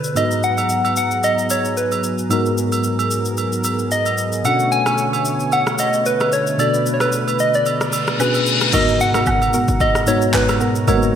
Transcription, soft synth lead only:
0.00 0.19 B4 medium
0.17 0.45 D#5 loud
0.44 0.97 F#5 loud
0.97 1.26 F#5 medium
1.24 1.52 D#5 medium
1.51 1.77 C#5 medium
1.77 2.16 B4 medium
3.92 4.47 D#5 loud
4.45 4.73 F#5 loud
4.72 5.54 G#5 loud
5.53 5.81 F#5 loud
5.80 6.08 D#5 medium
6.06 6.35 B4 medium
6.33 6.61 C#5 medium
6.60 6.95 D5 loud
6.94 7.03 C#5 medium
7.01 7.42 B4 medium
7.40 7.57 D#5 medium
7.55 8.20 D5 medium
8.21 8.70 B4 medium
8.74 9.02 D#5 loud
9.01 9.83 F#5 loud
9.81 10.09 D#5 loud
10.08 10.36 C#5 medium
10.35 10.76 B4 medium

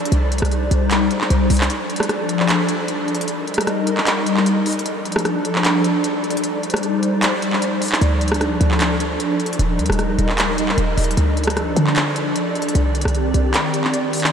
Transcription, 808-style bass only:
0.12 0.41 C2 loud
0.42 0.70 C2 loud
0.71 1.09 C2 loud
1.30 1.49 C2 loud
1.50 1.69 C2 loud
8.01 8.58 D2 loud
8.61 9.18 D2 loud
9.59 9.81 D#1 loud
9.79 9.89 D#2 loud
9.90 10.17 D#1 loud
10.19 10.75 D#1 loud
10.78 10.97 D#1 loud
10.98 11.16 D#1 loud
11.17 11.74 D2 loud
11.76 12.33 D3 loud
12.75 13.04 C2 loud
13.05 13.33 C2 loud
13.34 13.53 C2 loud

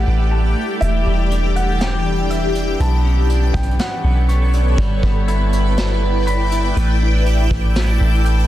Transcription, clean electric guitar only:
0.00 0.82 A3 medium
0.00 0.56 G4 medium
0.07 0.81 D4 medium
0.31 0.81 A5 medium
0.57 0.82 G4 medium
0.82 1.80 E3 medium
1.06 2.05 G3 medium
1.31 2.54 D4 medium
1.81 2.80 E3 medium
2.06 2.80 G3 medium
2.30 2.80 E5 medium
2.55 2.80 D4 medium
2.80 3.78 B3 medium
3.05 4.03 C#4 medium
3.29 4.53 D4 medium
3.79 4.78 B3 medium
4.04 4.79 C#4 medium
4.29 4.78 C#5 medium
4.54 4.78 D4 medium
4.78 5.76 G3 loud
5.03 6.01 B3 medium
5.28 6.27 E4 medium
5.77 6.76 G3 medium
6.03 6.77 B3 medium
6.27 6.77 B5 loud
6.52 6.77 E4 medium
6.76 7.75 A3 loud
7.01 7.99 D4 medium
7.26 8.47 G4 medium
7.76 8.47 A3 medium
8.00 8.47 D4 medium
8.25 8.47 G5 medium

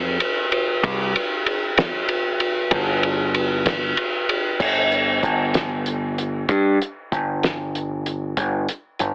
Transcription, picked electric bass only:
0.00 0.16 F2 medium
0.83 1.12 C2 medium
2.71 3.93 G1 medium
4.60 5.19 G1 medium
5.23 6.44 G1 medium
6.49 6.78 G2 loud
7.12 8.33 G1 medium
8.37 8.66 G1 medium
9.00 9.14 G1 medium

